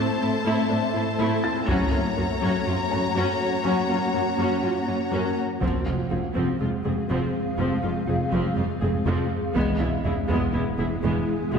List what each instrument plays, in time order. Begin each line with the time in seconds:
Already playing: synth drone A3 C4 A4 E5, synth pluck C4, violin section C5 A5, felt piano C5 B5
0.21 cello section A2, viola section A3 E4, synth pluck C4
0.45 cello section A2, synth pluck A3, viola section A3 E4
0.69 cello section A2, viola section A3 D4, synth pluck A4
0.94 cello section A2, viola section A3 E4, synth pluck E4
1.19 cello section A2, synth pluck A3, viola section A3 E4
1.44 felt piano E4 A6
1.66 cello section F#2, synth pluck F#3, synth drone A#3 C#4 F#4 F#5, viola section C#4 F#4, violin section C#5 A#5, taiko
1.92 cello section F#2, synth pluck A#3, viola section C#4 F4
2.17 cello section F#2, synth pluck A#3, viola section C#4 F#4
2.41 cello section F#2, synth pluck F#3, viola section C#4 F#4
2.66 cello section F#2, viola section C#4 F4, synth pluck F#4
2.90 cello section F#2, viola section C#4 F#4, synth pluck C#4, felt piano A#5
3.15 cello section F#2, synth pluck F#3, viola section C#4 F#4
3.65 cello section F#2, synth pluck F#3, viola section C#4 F#4, felt piano F#5
3.89 cello section F#2, synth pluck A#3, viola section C#4 F4
4.14 cello section F#2, synth pluck A#3, viola section C#4 F#4
4.38 cello section F#2, synth pluck F#3, viola section C#4 F#4
4.63 cello section F#2, viola section C#4 F4, synth pluck F#4
4.87 cello section F#2, viola section C#4 F#4, synth pluck C#4
5.12 cello section F#2, synth pluck F#3, viola section C#4 F#4, felt piano A#4
5.61 double bass section F1, cello section F2, viola section F3 C4, synth pluck F3, synth drone G#3 C4 G#4 F5, felt piano C5, taiko
5.85 double bass section F1, cello section F2, viola section G#3 F4, synth pluck F4
6.10 double bass section F1, cello section F2, viola section C4 G#4, synth pluck F4
6.34 double bass section F1, cello section F2, viola section F3 C4, synth pluck F3
6.60 double bass section F1, cello section F2, viola section G#3 F4, synth pluck G#3
6.84 double bass section F1, cello section F2, synth pluck G#3, viola section C4 G#4
7.09 double bass section F1, cello section F2, viola section F3 C4, synth pluck F3
7.57 double bass section F1, cello section F2, viola section F3 C4, synth pluck F3
7.82 double bass section F1, cello section F2, viola section G#3 F4, synth pluck F4
8.07 double bass section F1, cello section F2, viola section C4 G#4, synth pluck F4
8.32 double bass section F1, cello section F2, viola section F3 C4, synth pluck F3
8.56 double bass section F1, cello section F2, viola section G#3 F4, synth pluck G#3
8.81 double bass section F1, cello section F2, synth pluck G#3, viola section C4 G#4
9.06 double bass section F1, cello section F2, viola section F3 C4, synth pluck F3
9.55 double bass section E1, cello section E2, synth pluck E3, viola section G#3 B3, synth drone G#3 B3 E4 G#4, felt piano D#5, taiko
9.80 double bass section E1, cello section E2, viola section B3 E4, synth pluck E4
10.04 double bass section E1, cello section E2, synth pluck E4, viola section E4 G#4
10.28 double bass section E1, cello section E2, synth pluck E3, viola section G#3 B3, taiko
10.53 double bass section E1, cello section E2, synth pluck G#3, viola section B3 E4
10.78 double bass section E1, cello section E2, synth pluck G#3, viola section E4 G#4
11.03 double bass section E1, cello section E2, synth pluck E3, viola section G#3 B3
11.52 double bass section E1, cello section E2, synth pluck E3, viola section G#3 B3, felt piano F#4 F#5